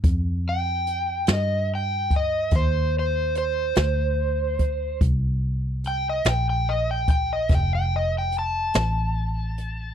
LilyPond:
<<
  \new Staff \with { instrumentName = "Electric slide guitar" } { \time 12/8 \key f \major \tempo 4. = 48 r8 g''4 ees''8 g''8 ees''8 c''8 c''8 c''2 | r4 g''16 ees''16 g''16 g''16 ees''16 g''16 g''16 ees''16 g''16 g''16 ees''16 g''16 a''2 | }
  \new Staff \with { instrumentName = "Fingered electric bass" } { \clef bass \time 12/8 \key f \major f,4. g,4. ees,4. d,4. | c,4. bes,,4. f,,4. a,,4. | }
  \new DrumStaff \with { instrumentName = "Drums" } \drummode { \time 12/8 <hh bd>4 hh8 <hh sn>4 <hh bd>8 <hh bd>4 hh8 <hh sn>4 <hh bd>8 | <hh bd>4 hh8 <hh sn>4 <hh bd>8 <hh bd sn>4 hh8 <hh sn>4 hh8 | }
>>